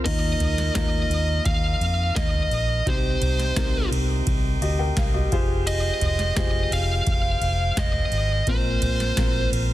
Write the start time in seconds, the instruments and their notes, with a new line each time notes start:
0.05 fingered electric bass D#2, tonewheel organ D#3 D#4 F4 A#4, upright piano D#3 A#3 D#4 F4 A#4, lead electric guitar D#5, kick, crash, ride
0.40 fingered electric bass D#2, floor tom, ride
0.58 snare, ride
0.75 fingered electric bass D#2, upright piano A#3 D#4 F4 A#4, lead electric guitar D#5, kick, snare, ride
1.09 fingered electric bass D#2, ride
1.45 fingered electric bass D#2, lead electric guitar F5, kick, ride
1.81 fingered electric bass F2, ride
2.16 fingered electric bass D#2, lead electric guitar D#5, kick, snare, ride
2.34 floor tom
2.51 fingered electric bass A#1, ride
2.85 fingered electric bass C2, tonewheel organ C3 C4 D#4 G5, upright piano C3 C4 D#4 G4 C5, lead electric guitar C5, kick, ride
3.21 fingered electric bass C2, floor tom, ride
3.39 snare, ride
3.56 fingered electric bass C2, upright piano C4 D#4 G4 A#4, kick, snare, ride
3.91 fingered electric bass C2, ride
4.27 fingered electric bass C2, kick, ride
4.61 fingered electric bass D2, upright piano G4 D#5, ride
4.79 upright piano A#4 G5
4.97 fingered electric bass C2, upright piano F5, kick, snare, ride
5.14 upright piano G4 D#5, floor tom
5.32 fingered electric bass F1, tonewheel organ F3 G#3, upright piano F4 G4 G#4 C5, kick, ride
5.67 lead electric guitar D#5, ride
6.01 fingered electric bass F1, floor tom, ride
6.19 snare, ride
6.37 fingered electric bass F1, upright piano F4 G4 G#4 C5, lead electric guitar D#5, kick, snare, ride
6.71 fingered electric bass F1, lead electric guitar F5, ride
7.07 fingered electric bass F1, kick, ride
7.41 fingered electric bass F1, ride
7.77 fingered electric bass F1, lead electric guitar D#5, kick, snare, ride
7.94 floor tom
8.11 fingered electric bass G#1, ride
8.47 fingered electric bass A#1, upright piano A#2 C4 F4 A#4 C5, tonewheel organ A#3 C4 F4, lead electric guitar C5, kick, ride
8.82 fingered electric bass A#1, floor tom, ride
9.00 snare, ride
9.17 fingered electric bass A#1, upright piano C4 F4 A#4 C5, kick, snare, ride
9.52 fingered electric bass A#1, ride